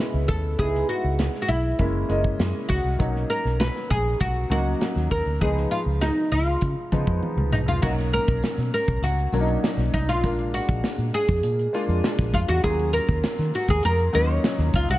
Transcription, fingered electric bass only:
0, 0, Header, 1, 3, 480
1, 0, Start_track
1, 0, Tempo, 601805
1, 473, Time_signature, 4, 2, 24, 8
1, 11953, End_track
2, 0, Start_track
2, 0, Title_t, "Fingered electric bass"
2, 0, Program_c, 0, 33
2, 108, Note_on_c, 0, 37, 85
2, 229, Note_off_c, 0, 37, 0
2, 229, Note_on_c, 0, 39, 80
2, 356, Note_off_c, 0, 39, 0
2, 356, Note_on_c, 0, 38, 75
2, 446, Note_off_c, 0, 38, 0
2, 472, Note_on_c, 0, 37, 96
2, 656, Note_off_c, 0, 37, 0
2, 830, Note_on_c, 0, 37, 84
2, 1015, Note_off_c, 0, 37, 0
2, 1183, Note_on_c, 0, 35, 80
2, 1371, Note_off_c, 0, 35, 0
2, 1431, Note_on_c, 0, 30, 88
2, 1616, Note_off_c, 0, 30, 0
2, 1667, Note_on_c, 0, 30, 76
2, 1854, Note_off_c, 0, 30, 0
2, 1908, Note_on_c, 0, 42, 85
2, 2003, Note_off_c, 0, 42, 0
2, 2146, Note_on_c, 0, 37, 81
2, 2241, Note_off_c, 0, 37, 0
2, 2266, Note_on_c, 0, 36, 74
2, 2361, Note_off_c, 0, 36, 0
2, 2393, Note_on_c, 0, 35, 95
2, 2578, Note_off_c, 0, 35, 0
2, 2750, Note_on_c, 0, 35, 78
2, 2937, Note_off_c, 0, 35, 0
2, 3113, Note_on_c, 0, 34, 82
2, 3298, Note_off_c, 0, 34, 0
2, 3354, Note_on_c, 0, 35, 80
2, 3539, Note_off_c, 0, 35, 0
2, 3586, Note_on_c, 0, 37, 76
2, 3774, Note_off_c, 0, 37, 0
2, 3953, Note_on_c, 0, 39, 81
2, 4047, Note_off_c, 0, 39, 0
2, 4080, Note_on_c, 0, 39, 78
2, 4171, Note_off_c, 0, 39, 0
2, 4195, Note_on_c, 0, 38, 78
2, 4288, Note_off_c, 0, 38, 0
2, 4317, Note_on_c, 0, 37, 96
2, 4502, Note_off_c, 0, 37, 0
2, 4672, Note_on_c, 0, 37, 85
2, 4858, Note_off_c, 0, 37, 0
2, 5038, Note_on_c, 0, 37, 81
2, 5222, Note_off_c, 0, 37, 0
2, 5279, Note_on_c, 0, 49, 90
2, 5371, Note_off_c, 0, 49, 0
2, 5519, Note_on_c, 0, 49, 87
2, 5611, Note_off_c, 0, 49, 0
2, 5640, Note_on_c, 0, 41, 80
2, 5732, Note_off_c, 0, 41, 0
2, 5872, Note_on_c, 0, 37, 75
2, 5996, Note_off_c, 0, 37, 0
2, 5996, Note_on_c, 0, 35, 80
2, 6107, Note_off_c, 0, 35, 0
2, 6107, Note_on_c, 0, 36, 78
2, 6204, Note_off_c, 0, 36, 0
2, 6244, Note_on_c, 0, 35, 94
2, 6519, Note_off_c, 0, 35, 0
2, 6606, Note_on_c, 0, 35, 80
2, 6696, Note_off_c, 0, 35, 0
2, 6841, Note_on_c, 0, 47, 84
2, 6933, Note_off_c, 0, 47, 0
2, 7080, Note_on_c, 0, 35, 82
2, 7173, Note_off_c, 0, 35, 0
2, 7193, Note_on_c, 0, 37, 92
2, 7380, Note_off_c, 0, 37, 0
2, 7436, Note_on_c, 0, 35, 79
2, 7621, Note_off_c, 0, 35, 0
2, 7794, Note_on_c, 0, 35, 78
2, 7889, Note_off_c, 0, 35, 0
2, 7923, Note_on_c, 0, 36, 78
2, 8038, Note_off_c, 0, 36, 0
2, 8038, Note_on_c, 0, 35, 80
2, 8164, Note_off_c, 0, 35, 0
2, 8164, Note_on_c, 0, 34, 97
2, 8439, Note_off_c, 0, 34, 0
2, 8523, Note_on_c, 0, 34, 80
2, 8614, Note_off_c, 0, 34, 0
2, 8759, Note_on_c, 0, 46, 82
2, 8851, Note_off_c, 0, 46, 0
2, 9002, Note_on_c, 0, 41, 88
2, 9093, Note_off_c, 0, 41, 0
2, 9119, Note_on_c, 0, 46, 95
2, 9303, Note_off_c, 0, 46, 0
2, 9477, Note_on_c, 0, 41, 83
2, 9570, Note_off_c, 0, 41, 0
2, 9720, Note_on_c, 0, 34, 82
2, 9812, Note_off_c, 0, 34, 0
2, 9836, Note_on_c, 0, 41, 83
2, 9929, Note_off_c, 0, 41, 0
2, 9960, Note_on_c, 0, 40, 87
2, 10051, Note_off_c, 0, 40, 0
2, 10077, Note_on_c, 0, 39, 101
2, 10353, Note_off_c, 0, 39, 0
2, 10438, Note_on_c, 0, 39, 95
2, 10530, Note_off_c, 0, 39, 0
2, 10677, Note_on_c, 0, 51, 91
2, 10769, Note_off_c, 0, 51, 0
2, 10912, Note_on_c, 0, 39, 90
2, 11006, Note_off_c, 0, 39, 0
2, 11042, Note_on_c, 0, 41, 88
2, 11224, Note_off_c, 0, 41, 0
2, 11282, Note_on_c, 0, 39, 80
2, 11464, Note_off_c, 0, 39, 0
2, 11632, Note_on_c, 0, 39, 88
2, 11725, Note_off_c, 0, 39, 0
2, 11754, Note_on_c, 0, 37, 77
2, 11846, Note_off_c, 0, 37, 0
2, 11879, Note_on_c, 0, 36, 87
2, 11953, Note_off_c, 0, 36, 0
2, 11953, End_track
3, 0, Start_track
3, 0, Title_t, "Muted fingered electric bass strokes"
3, 6723, Note_on_c, 9, 29, 49
3, 6803, Note_off_c, 9, 29, 0
3, 8639, Note_on_c, 9, 29, 46
3, 8719, Note_off_c, 9, 29, 0
3, 10562, Note_on_c, 9, 29, 49
3, 10641, Note_off_c, 9, 29, 0
3, 11953, End_track
0, 0, End_of_file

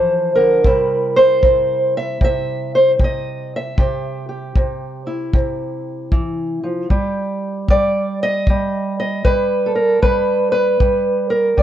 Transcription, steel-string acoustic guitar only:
0, 0, Header, 1, 2, 480
1, 0, Start_track
1, 0, Tempo, 780234
1, 402, Time_signature, 4, 2, 24, 8
1, 7153, End_track
2, 0, Start_track
2, 0, Title_t, "Steel-string acoustic guitar"
2, 0, Program_c, 0, 25
2, 0, Note_on_c, 0, 52, 61
2, 0, Note_on_c, 0, 53, 80
2, 0, Note_on_c, 0, 69, 93
2, 0, Note_on_c, 0, 72, 98
2, 217, Note_off_c, 0, 72, 0
2, 220, Note_on_c, 0, 70, 85
2, 225, Note_off_c, 0, 52, 0
2, 228, Note_on_c, 0, 50, 59
2, 233, Note_off_c, 0, 69, 0
2, 384, Note_off_c, 0, 53, 0
2, 399, Note_off_c, 0, 50, 0
2, 403, Note_on_c, 0, 48, 75
2, 406, Note_on_c, 0, 55, 54
2, 409, Note_on_c, 0, 64, 58
2, 718, Note_on_c, 0, 72, 101
2, 883, Note_off_c, 0, 48, 0
2, 885, Note_on_c, 0, 48, 73
2, 1188, Note_off_c, 0, 70, 0
2, 1197, Note_off_c, 0, 72, 0
2, 1213, Note_on_c, 0, 76, 100
2, 1359, Note_off_c, 0, 48, 0
2, 1361, Note_on_c, 0, 48, 79
2, 1372, Note_off_c, 0, 76, 0
2, 1381, Note_on_c, 0, 76, 100
2, 1685, Note_off_c, 0, 76, 0
2, 1691, Note_on_c, 0, 72, 86
2, 1787, Note_off_c, 0, 72, 0
2, 1838, Note_off_c, 0, 48, 0
2, 1845, Note_on_c, 0, 48, 72
2, 1871, Note_on_c, 0, 75, 89
2, 2171, Note_off_c, 0, 75, 0
2, 2190, Note_on_c, 0, 76, 85
2, 2306, Note_off_c, 0, 48, 0
2, 2309, Note_off_c, 0, 64, 0
2, 2328, Note_on_c, 0, 48, 80
2, 2334, Note_on_c, 0, 67, 57
2, 2637, Note_off_c, 0, 67, 0
2, 2639, Note_on_c, 0, 67, 47
2, 2801, Note_off_c, 0, 48, 0
2, 2808, Note_on_c, 0, 48, 74
2, 3118, Note_on_c, 0, 64, 51
2, 3280, Note_off_c, 0, 48, 0
2, 3287, Note_on_c, 0, 48, 78
2, 3616, Note_off_c, 0, 76, 0
2, 3763, Note_on_c, 0, 52, 62
2, 4078, Note_off_c, 0, 52, 0
2, 4081, Note_on_c, 0, 53, 60
2, 4228, Note_off_c, 0, 48, 0
2, 4228, Note_off_c, 0, 64, 0
2, 4238, Note_off_c, 0, 55, 0
2, 4243, Note_off_c, 0, 53, 0
2, 4245, Note_on_c, 0, 55, 80
2, 4247, Note_off_c, 0, 67, 0
2, 4249, Note_on_c, 0, 67, 52
2, 4735, Note_off_c, 0, 55, 0
2, 4738, Note_on_c, 0, 55, 72
2, 4739, Note_on_c, 0, 74, 98
2, 5045, Note_off_c, 0, 74, 0
2, 5061, Note_on_c, 0, 75, 114
2, 5224, Note_off_c, 0, 55, 0
2, 5227, Note_on_c, 0, 55, 75
2, 5526, Note_off_c, 0, 75, 0
2, 5534, Note_on_c, 0, 75, 99
2, 5685, Note_off_c, 0, 67, 0
2, 5687, Note_on_c, 0, 71, 94
2, 5690, Note_off_c, 0, 55, 0
2, 5693, Note_on_c, 0, 55, 76
2, 5695, Note_off_c, 0, 75, 0
2, 5945, Note_on_c, 0, 69, 63
2, 5999, Note_off_c, 0, 71, 0
2, 6002, Note_on_c, 0, 70, 81
2, 6163, Note_off_c, 0, 55, 0
2, 6164, Note_off_c, 0, 70, 0
2, 6165, Note_on_c, 0, 55, 78
2, 6166, Note_on_c, 0, 71, 106
2, 6464, Note_off_c, 0, 71, 0
2, 6471, Note_on_c, 0, 71, 105
2, 6480, Note_off_c, 0, 69, 0
2, 6646, Note_off_c, 0, 55, 0
2, 6648, Note_on_c, 0, 55, 75
2, 6951, Note_off_c, 0, 71, 0
2, 6953, Note_on_c, 0, 70, 89
2, 7117, Note_off_c, 0, 55, 0
2, 7119, Note_on_c, 0, 55, 83
2, 7123, Note_off_c, 0, 70, 0
2, 7128, Note_on_c, 0, 74, 104
2, 7153, Note_off_c, 0, 55, 0
2, 7153, Note_off_c, 0, 74, 0
2, 7153, End_track
0, 0, End_of_file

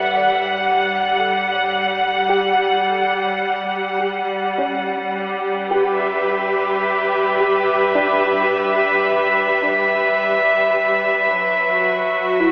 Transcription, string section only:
0, 0, Header, 1, 2, 480
1, 0, Start_track
1, 0, Tempo, 1125704
1, 507, Time_signature, 3, 2, 24, 8
1, 2914, Tempo, 1113173
1, 5365, End_track
2, 0, Start_track
2, 0, Title_t, "String section"
2, 0, Program_c, 0, 48
2, 0, Note_on_c, 0, 55, 72
2, 0, Note_on_c, 0, 67, 68
2, 0, Note_on_c, 0, 71, 62
2, 0, Note_on_c, 0, 76, 83
2, 0, Note_on_c, 0, 78, 84
2, 83, Note_off_c, 0, 71, 0
2, 224, Note_off_c, 0, 76, 0
2, 1955, Note_off_c, 0, 67, 0
2, 2202, Note_on_c, 0, 67, 75
2, 2436, Note_on_c, 0, 71, 64
2, 2469, Note_off_c, 0, 78, 0
2, 2526, Note_on_c, 0, 76, 72
2, 4827, Note_off_c, 0, 55, 0
2, 4831, Note_off_c, 0, 67, 0
2, 4843, Note_on_c, 0, 54, 74
2, 5008, Note_on_c, 0, 66, 92
2, 5365, Note_off_c, 0, 54, 0
2, 5365, Note_off_c, 0, 66, 0
2, 5365, Note_off_c, 0, 71, 0
2, 5365, Note_off_c, 0, 76, 0
2, 5365, End_track
0, 0, End_of_file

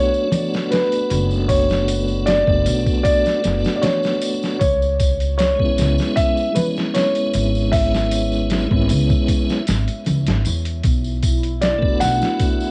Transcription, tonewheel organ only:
0, 0, Header, 1, 2, 480
1, 0, Start_track
1, 0, Tempo, 779221
1, 920, Time_signature, 4, 2, 24, 8
1, 7829, End_track
2, 0, Start_track
2, 0, Title_t, "Tonewheel organ"
2, 0, Program_c, 0, 16
2, 0, Note_on_c, 0, 57, 87
2, 0, Note_on_c, 0, 59, 85
2, 0, Note_on_c, 0, 62, 81
2, 0, Note_on_c, 0, 66, 102
2, 159, Note_off_c, 0, 57, 0
2, 168, Note_off_c, 0, 59, 0
2, 170, Note_on_c, 0, 57, 83
2, 178, Note_off_c, 0, 62, 0
2, 188, Note_off_c, 0, 66, 0
2, 190, Note_on_c, 0, 59, 73
2, 209, Note_on_c, 0, 62, 75
2, 229, Note_on_c, 0, 66, 86
2, 1481, Note_off_c, 0, 57, 0
2, 1491, Note_off_c, 0, 59, 0
2, 1497, Note_on_c, 0, 57, 91
2, 1501, Note_off_c, 0, 62, 0
2, 1511, Note_off_c, 0, 66, 0
2, 1517, Note_on_c, 0, 59, 86
2, 1536, Note_on_c, 0, 62, 89
2, 1556, Note_on_c, 0, 66, 103
2, 2079, Note_off_c, 0, 57, 0
2, 2088, Note_off_c, 0, 59, 0
2, 2091, Note_on_c, 0, 57, 77
2, 2098, Note_off_c, 0, 62, 0
2, 2108, Note_off_c, 0, 66, 0
2, 2112, Note_on_c, 0, 59, 80
2, 2131, Note_on_c, 0, 62, 72
2, 2151, Note_on_c, 0, 66, 91
2, 2812, Note_off_c, 0, 57, 0
2, 2822, Note_off_c, 0, 59, 0
2, 2832, Note_off_c, 0, 62, 0
2, 2842, Note_off_c, 0, 66, 0
2, 3419, Note_on_c, 0, 56, 94
2, 3441, Note_on_c, 0, 59, 81
2, 3459, Note_on_c, 0, 61, 83
2, 3479, Note_on_c, 0, 64, 107
2, 4000, Note_off_c, 0, 56, 0
2, 4010, Note_off_c, 0, 59, 0
2, 4018, Note_on_c, 0, 56, 80
2, 4020, Note_off_c, 0, 61, 0
2, 4029, Note_off_c, 0, 64, 0
2, 4037, Note_on_c, 0, 59, 77
2, 4057, Note_on_c, 0, 61, 74
2, 4077, Note_on_c, 0, 64, 93
2, 5325, Note_off_c, 0, 56, 0
2, 5334, Note_off_c, 0, 59, 0
2, 5340, Note_on_c, 0, 56, 93
2, 5345, Note_off_c, 0, 61, 0
2, 5354, Note_off_c, 0, 64, 0
2, 5360, Note_on_c, 0, 59, 86
2, 5379, Note_on_c, 0, 61, 83
2, 5399, Note_on_c, 0, 64, 108
2, 5920, Note_off_c, 0, 56, 0
2, 5930, Note_off_c, 0, 59, 0
2, 5940, Note_off_c, 0, 61, 0
2, 5950, Note_off_c, 0, 64, 0
2, 7259, Note_on_c, 0, 57, 93
2, 7280, Note_on_c, 0, 59, 85
2, 7299, Note_on_c, 0, 62, 85
2, 7318, Note_on_c, 0, 66, 104
2, 7829, Note_off_c, 0, 57, 0
2, 7829, Note_off_c, 0, 59, 0
2, 7829, Note_off_c, 0, 62, 0
2, 7829, Note_off_c, 0, 66, 0
2, 7829, End_track
0, 0, End_of_file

